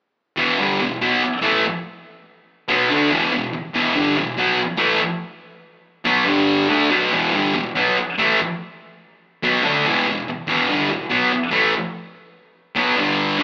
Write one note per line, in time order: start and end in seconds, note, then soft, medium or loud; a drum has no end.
0.36 0.57 E2 medium
0.36 0.58 B2 medium
0.36 0.58 E3 medium
0.59 0.79 G2 medium
0.59 0.80 D3 medium
0.59 0.80 G3 loud
0.81 0.97 E2 medium
0.81 0.97 B2 medium
1.01 1.21 B2 medium
1.01 1.22 F#3 medium
1.01 1.22 B3 loud
1.23 muted distorted electric guitar stroke medium
1.42 1.63 A2 medium
1.42 1.63 E3 medium
1.42 1.64 A3 medium
2.68 2.89 B2 medium
2.68 2.90 F#3 medium
2.68 2.90 B3 loud
2.90 3.11 D3 medium
2.90 3.12 A3 loud
2.90 3.12 D4 loud
3.11 3.31 E2 medium
3.11 3.31 B2 medium
3.11 3.33 E3 medium
3.32 3.49 E2 medium
3.32 3.50 B2 medium
3.53 muted distorted electric guitar stroke medium
3.74 3.95 E2 medium
3.74 3.95 B2 loud
3.74 3.96 E3 loud
3.95 4.16 G2 medium
3.95 4.16 D3 medium
3.95 4.17 G3 medium
4.17 4.34 E2 medium
4.17 4.34 B2 medium
4.37 4.58 B2 loud
4.37 4.59 F#3 loud
4.37 4.59 B3 loud
4.58 muted distorted electric guitar stroke medium
4.77 5.00 A2 medium
4.77 5.00 E3 medium
4.77 5.01 A3 loud
6.05 6.25 B2 medium
6.05 6.26 F#3 loud
6.05 6.27 B3 loud
6.25 6.68 G2 medium
6.25 6.68 D3 medium
6.25 6.69 G3 loud
6.69 6.90 D3 medium
6.69 6.90 A3 medium
6.69 6.91 D4 medium
6.90 7.11 B2 medium
6.90 7.11 F#3 medium
6.90 7.12 B3 medium
7.12 7.32 E2 medium
7.12 7.33 B2 medium
7.12 7.33 E3 medium
7.33 7.54 G2 medium
7.33 7.54 D3 medium
7.33 7.55 G3 loud
7.54 7.71 E2 medium
7.54 7.71 B2 medium
7.75 7.96 B2 loud
7.75 7.96 F#3 loud
7.75 7.97 B3 loud
7.97 muted distorted electric guitar stroke medium
8.18 8.38 A2 medium
8.18 8.38 E3 loud
8.18 8.39 A3 loud
9.43 9.63 B2 medium
9.43 9.64 F#3 loud
9.43 9.64 B3 medium
9.63 9.84 D3 medium
9.63 9.85 A3 loud
9.63 9.85 D4 loud
9.86 10.06 E2 medium
9.86 10.06 B2 medium
9.86 10.07 E3 medium
10.07 10.23 E2 medium
10.07 10.23 B2 medium
10.28 muted distorted electric guitar stroke medium
10.47 10.68 E2 medium
10.47 10.69 B2 loud
10.47 10.69 E3 loud
10.69 10.89 G2 medium
10.69 10.89 D3 medium
10.69 10.89 G3 loud
10.90 11.07 E2 medium
10.90 11.07 B2 medium
11.10 11.30 B2 loud
11.10 11.31 F#3 loud
11.10 11.31 B3 loud
11.32 muted distorted electric guitar stroke medium
11.51 11.72 A2 medium
11.51 11.72 E3 medium
11.51 11.72 A3 loud
12.75 12.96 B2 medium
12.75 12.96 F#3 medium
12.75 12.97 B3 loud
12.96 13.37 G2 medium
12.96 13.37 D3 loud
12.96 13.38 G3 loud
13.38 13.43 D3 medium
13.38 13.43 A3 medium
13.38 13.43 D4 loud